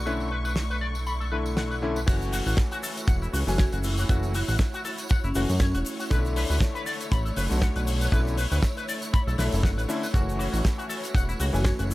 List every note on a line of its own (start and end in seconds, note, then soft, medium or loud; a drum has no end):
0.00 2.05 B1 medium
0.00 2.03 D3 medium
0.00 2.03 A3 medium
0.00 2.04 E4 medium
0.00 2.03 C#6 medium
0.06 0.27 D3 medium
0.06 0.27 A3 medium
0.06 0.28 C#4 medium
0.06 0.28 E4 medium
0.06 0.13 B4 medium
0.06 tambourine medium
0.20 tambourine soft
0.31 0.35 B4 medium
0.45 0.51 B4 medium
0.45 tambourine medium
0.56 snare medium
0.56 tambourine medium
0.70 0.76 B4 medium
0.70 tambourine soft
0.81 0.86 D5 medium
0.95 tambourine medium
1.07 1.14 B5 medium
1.07 tambourine medium
1.20 1.24 A4 medium
1.20 tambourine soft
1.32 1.79 D3 medium
1.32 1.80 A3 medium
1.32 1.80 E4 medium
1.32 1.36 B4 medium
1.46 tambourine medium
1.57 1.61 F#5 medium
1.57 snare medium
1.57 tambourine medium
1.71 1.74 B4 medium
1.71 tambourine soft
1.82 1.97 D3 medium
1.82 1.97 A3 medium
1.82 1.97 C#4 medium
1.82 1.97 E4 loud
1.96 2.00 B4 medium
1.96 tambourine medium
2.06 2.42 F#1 loud
2.06 3.44 E3 medium
2.06 3.44 A3 medium
2.06 11.94 A3 medium
2.06 3.44 C#4 medium
2.06 6.07 E4 medium
2.06 2.14 F#4 medium
2.06 6.07 F#4 medium
2.06 3.45 F#4 loud
2.06 11.94 C#5 medium
2.06 kick loud
2.06 closed hi-hat medium
2.06 crash loud
2.06 tambourine medium
2.06 shaker medium
2.21 tambourine soft
2.21 shaker soft
2.33 2.37 F#4 loud
2.33 open hi-hat loud
2.33 shaker medium
2.46 2.55 A1 loud
2.46 2.52 F#4 medium
2.46 tambourine medium
2.46 shaker medium
2.57 kick loud
2.57 snare loud
2.57 closed hi-hat medium
2.57 tambourine medium
2.57 shaker medium
2.71 2.77 F#4 loud
2.71 tambourine soft
2.71 shaker soft
2.83 2.87 A4 loud
2.83 open hi-hat loud
2.83 shaker medium
2.97 closed hi-hat medium
2.97 tambourine medium
2.97 shaker medium
3.08 3.28 E1 medium
3.08 3.15 F#5 medium
3.08 kick loud
3.08 closed hi-hat medium
3.08 tambourine medium
3.08 shaker medium
3.22 3.26 E4 medium
3.22 tambourine soft
3.22 shaker soft
3.33 3.44 C#2 medium
3.33 3.38 F#4 loud
3.33 open hi-hat loud
3.33 shaker medium
3.47 3.66 F#1 medium
3.47 4.06 E3 medium
3.47 4.07 A3 medium
3.47 4.07 C#4 medium
3.47 3.64 F#4 medium
3.47 4.07 G#5 medium
3.47 tambourine medium
3.47 shaker medium
3.58 3.63 C#5 medium
3.58 kick loud
3.58 snare loud
3.58 closed hi-hat medium
3.58 tambourine medium
3.58 shaker medium
3.72 4.05 F#1 medium
3.72 3.76 F#4 medium
3.72 closed hi-hat medium
3.72 tambourine soft
3.72 shaker soft
3.83 4.32 E4 medium
3.83 open hi-hat loud
3.83 shaker medium
3.97 4.01 F#4 medium
3.97 tambourine medium
3.97 shaker soft
4.09 4.43 F#1 loud
4.09 4.31 E3 medium
4.09 4.31 A3 medium
4.09 4.31 C#4 medium
4.09 4.16 F#4 medium
4.09 4.31 F#4 loud
4.09 kick loud
4.09 closed hi-hat loud
4.09 tambourine medium
4.09 shaker medium
4.23 tambourine soft
4.23 shaker soft
4.34 4.52 E4 medium
4.34 4.39 F#4 loud
4.34 open hi-hat loud
4.34 shaker medium
4.48 4.57 A1 loud
4.48 4.54 F#4 medium
4.48 tambourine medium
4.48 shaker soft
4.58 kick loud
4.58 snare loud
4.58 closed hi-hat medium
4.58 tambourine medium
4.58 shaker medium
4.74 4.79 F#4 loud
4.74 tambourine soft
4.74 shaker soft
4.85 4.89 A4 loud
4.85 open hi-hat loud
4.85 shaker medium
4.98 closed hi-hat medium
4.98 tambourine medium
4.98 shaker medium
5.09 5.17 F#5 medium
5.09 kick loud
5.09 closed hi-hat medium
5.09 tambourine medium
5.09 shaker medium
5.24 5.33 F#1 medium
5.24 5.40 C#4 medium
5.24 5.27 E4 medium
5.24 tambourine soft
5.24 shaker soft
5.35 5.46 F#1 medium
5.35 5.50 E3 medium
5.35 5.50 A3 medium
5.35 5.50 C#4 medium
5.35 5.39 F#4 loud
5.35 5.50 F#4 medium
5.35 open hi-hat loud
5.35 shaker medium
5.49 5.74 F#2 loud
5.49 5.57 C#4 medium
5.49 tambourine medium
5.49 shaker medium
5.60 5.70 C#4 medium
5.60 5.65 C#5 medium
5.60 kick loud
5.60 snare loud
5.60 closed hi-hat medium
5.60 tambourine medium
5.60 shaker medium
5.74 5.83 E1 medium
5.74 6.11 E4 medium
5.74 5.78 F#4 medium
5.74 closed hi-hat medium
5.74 tambourine soft
5.74 shaker soft
5.85 open hi-hat loud
5.85 shaker medium
6.00 6.03 F#4 medium
6.00 tambourine medium
6.00 shaker soft
6.10 6.45 B1 loud
6.10 7.47 D3 medium
6.10 10.10 D3 medium
6.10 7.47 A3 medium
6.10 11.94 E4 medium
6.10 7.48 E4 loud
6.10 6.18 B4 medium
6.10 kick loud
6.10 closed hi-hat medium
6.10 tambourine medium
6.10 shaker medium
6.25 tambourine soft
6.25 shaker soft
6.36 6.40 B4 loud
6.36 open hi-hat loud
6.36 shaker medium
6.50 6.59 D2 loud
6.50 6.56 B4 medium
6.50 tambourine medium
6.50 shaker soft
6.60 kick loud
6.60 snare loud
6.60 closed hi-hat medium
6.60 tambourine medium
6.60 shaker medium
6.75 6.81 B4 loud
6.75 tambourine soft
6.75 shaker soft
6.86 6.91 D5 loud
6.86 open hi-hat loud
6.86 shaker medium
7.01 closed hi-hat medium
7.01 tambourine medium
7.01 shaker soft
7.12 7.32 A1 medium
7.12 7.19 B5 medium
7.12 kick loud
7.12 closed hi-hat medium
7.12 tambourine medium
7.12 shaker medium
7.25 7.29 A4 medium
7.25 tambourine soft
7.25 shaker soft
7.36 7.48 F#1 medium
7.36 7.41 B4 loud
7.36 open hi-hat loud
7.36 shaker medium
7.49 7.70 B1 medium
7.49 8.09 D3 medium
7.49 8.10 A3 medium
7.49 8.10 F#4 medium
7.49 tambourine medium
7.49 shaker soft
7.62 7.66 F#5 medium
7.62 kick loud
7.62 snare loud
7.62 closed hi-hat medium
7.62 tambourine medium
7.62 shaker medium
7.76 8.09 B1 medium
7.76 7.79 B4 medium
7.76 closed hi-hat medium
7.76 tambourine soft
7.76 shaker soft
7.87 open hi-hat loud
7.87 shaker medium
8.01 8.05 B4 medium
8.01 tambourine medium
8.01 shaker medium
8.12 8.46 B1 loud
8.12 8.34 D3 medium
8.12 8.34 A3 medium
8.12 8.34 C#4 medium
8.12 8.34 E4 loud
8.12 8.20 B4 medium
8.12 kick loud
8.12 closed hi-hat medium
8.12 tambourine medium
8.12 shaker medium
8.27 tambourine soft
8.27 shaker soft
8.37 8.42 B4 loud
8.37 open hi-hat loud
8.37 shaker medium
8.52 8.60 D2 loud
8.52 8.57 B4 medium
8.52 tambourine medium
8.52 shaker medium
8.62 kick loud
8.62 snare loud
8.62 tambourine medium
8.62 shaker medium
8.77 8.83 B4 loud
8.77 closed hi-hat medium
8.77 tambourine soft
8.77 shaker soft
8.88 8.93 D5 loud
8.88 open hi-hat loud
8.88 shaker medium
9.02 closed hi-hat medium
9.02 tambourine medium
9.02 shaker soft
9.13 9.20 B5 medium
9.13 kick loud
9.13 closed hi-hat medium
9.13 tambourine medium
9.13 shaker medium
9.27 9.36 B1 medium
9.27 9.31 A4 medium
9.27 tambourine soft
9.27 shaker soft
9.38 9.49 B1 medium
9.38 9.86 D3 medium
9.38 9.86 A3 medium
9.38 9.87 E4 medium
9.38 9.43 B4 loud
9.38 snare medium
9.38 open hi-hat loud
9.38 shaker medium
9.52 9.77 F#1 loud
9.52 tambourine medium
9.52 shaker soft
9.63 9.68 F#5 medium
9.63 kick loud
9.63 snare loud
9.63 closed hi-hat medium
9.63 tambourine medium
9.63 shaker medium
9.78 9.86 A1 medium
9.78 9.81 B4 medium
9.78 closed hi-hat medium
9.78 tambourine soft
9.78 shaker soft
9.88 10.03 D3 medium
9.88 10.03 A3 medium
9.88 10.03 C#4 medium
9.88 10.04 E4 loud
9.88 open hi-hat loud
9.88 shaker medium
10.03 10.06 B4 medium
10.03 tambourine medium
10.03 shaker medium
10.13 10.48 F#1 loud
10.13 11.50 E3 medium
10.13 11.51 A3 medium
10.13 11.51 C#4 medium
10.13 10.21 F#4 medium
10.13 11.94 F#4 medium
10.13 11.51 F#4 loud
10.13 kick loud
10.13 closed hi-hat medium
10.13 tambourine medium
10.13 shaker medium
10.29 tambourine soft
10.29 shaker soft
10.39 10.43 F#4 loud
10.39 open hi-hat loud
10.39 shaker medium
10.53 10.62 A1 loud
10.53 10.59 F#4 medium
10.53 tambourine medium
10.53 shaker medium
10.65 kick loud
10.65 snare loud
10.65 closed hi-hat medium
10.65 tambourine medium
10.65 shaker medium
10.78 10.84 F#4 loud
10.78 tambourine soft
10.78 shaker soft
10.89 10.94 A4 loud
10.89 open hi-hat loud
10.89 shaker medium
11.04 closed hi-hat medium
11.04 tambourine medium
11.04 shaker medium
11.15 11.35 E1 medium
11.15 11.22 F#5 medium
11.15 kick loud
11.15 closed hi-hat medium
11.15 tambourine medium
11.15 shaker medium
11.29 11.32 E4 medium
11.29 tambourine soft
11.29 shaker soft
11.40 11.51 C#2 medium
11.40 11.44 F#4 loud
11.40 open hi-hat loud
11.40 shaker medium
11.53 11.73 F#1 medium
11.53 11.94 E3 medium
11.53 11.94 A3 medium
11.53 11.94 C#4 medium
11.53 11.70 F#4 medium
11.53 11.94 G#5 medium
11.53 tambourine medium
11.53 shaker soft
11.64 11.70 C#5 medium
11.64 kick medium
11.64 snare loud
11.64 closed hi-hat medium
11.64 tambourine medium
11.64 shaker medium
11.79 11.94 F#1 medium
11.79 11.83 F#4 medium
11.79 closed hi-hat medium
11.79 tambourine soft
11.79 shaker soft
11.91 11.94 E4 medium
11.91 open hi-hat medium
11.91 shaker medium